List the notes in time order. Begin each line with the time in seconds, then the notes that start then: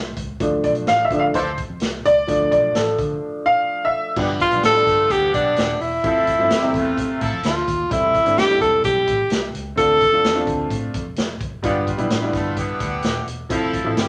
Already playing: C2
0.17 C#2, kick, closed hi-hat
0.40 D2 F3 A3 D4, kick, closed hi-hat
0.64 B1 D5, kick, closed hi-hat
0.75 closed hi-hat
0.87 A1 F5, snare, closed hi-hat
1.05 E5
1.11 D3 F3 A3 D4, kick, closed hi-hat
1.19 F5
1.34 D2 F3 D4 A4 C5, kick, closed hi-hat
1.58 kick, closed hi-hat
1.70 F2
1.80 C2, snare, closed hi-hat
2.05 C#2 D5, closed hi-hat
2.27 D2 F3 A3 D4, kick, closed hi-hat
2.51 B1 D5, kick, closed hi-hat
2.75 A1 A4, snare, closed hi-hat
2.99 D3, kick, closed hi-hat
3.46 F5
3.85 E5
4.16 G1 D3 F3 G3 B3 D4 G4, kick, crash
4.40 G3 F4 B4 F5, kick, closed hi-hat
4.51 B1 F3 G3 B3 D4, closed hi-hat
4.63 A1 A4 A5, snare, closed hi-hat
4.73 F3 G3 B3 D4, closed hi-hat
4.87 G1 A3 F4 A4, kick, snare, closed hi-hat
5.10 D2 D3 B3 G4 G5, kick, closed hi-hat
5.34 B1 D4 D5, kick, closed hi-hat
5.56 D#1, snare, closed hi-hat
5.80 E1 E4 E5, open hi-hat
6.04 F2 F3 A3 C4 E4 A4, kick, closed hi-hat
6.27 kick, closed hi-hat
6.39 G2 F3 A3 C4 E4
6.50 F2 G3 E4 G4, snare, closed hi-hat
6.62 C3 G3 C4 E5, snare
6.68 A3
6.74 E2 C3 A3 F4, kick, closed hi-hat
6.98 kick, closed hi-hat
7.21 A2 F3 E4 A4, kick, closed hi-hat
7.33 F2
7.43 D2 F4 F5, snare, closed hi-hat
7.68 D#2, kick, closed hi-hat
7.90 E1 G3 A3 C4 E4 E5, kick, closed hi-hat
8.14 kick, closed hi-hat
8.25 G1 G3 A3 C4 D4, closed hi-hat
8.38 F1 G4 G5, snare, closed hi-hat
8.49 G3 A3 C4 E4, closed hi-hat
8.60 E1 A4 A5, kick, snare, closed hi-hat
8.84 B1 G4 G5, kick, closed hi-hat
9.07 A1, kick, closed hi-hat
9.30 C2, snare, closed hi-hat
9.54 C#2, closed hi-hat
9.76 D2 A3 C4 D4 F4 A4 A5, kick, closed hi-hat
10.01 kick, closed hi-hat
10.11 F2 A3 C4 D4 F4
10.24 E2, snare, closed hi-hat
10.34 A3 C4 D4 F4, closed hi-hat
10.47 D2, kick, closed hi-hat
10.70 A2, kick, closed hi-hat
10.94 F2, kick, closed hi-hat
11.16 F1, snare, closed hi-hat
11.41 F#1, kick, closed hi-hat
11.63 G1 D3 G3 B3 D4 F4 G4, kick, closed hi-hat
11.87 G3 F4 B4, kick, closed hi-hat
11.97 B1 G3 B3 D4 E4, closed hi-hat
12.10 A1, snare, closed hi-hat
12.22 G3 B3 D4 E4
12.33 G1 A3 F4 A4, kick, snare, closed hi-hat
12.57 D3 B3 G4, kick, closed hi-hat
12.80 D2, kick, closed hi-hat
13.02 D#1, snare, closed hi-hat
13.27 E1, closed hi-hat
13.49 F1 F3 A3 C4 E4 A4, kick, closed hi-hat
13.74 kick, closed hi-hat
13.84 A1 F3 A3 C4 E4
13.96 G1 G3 E4 G4, snare, closed hi-hat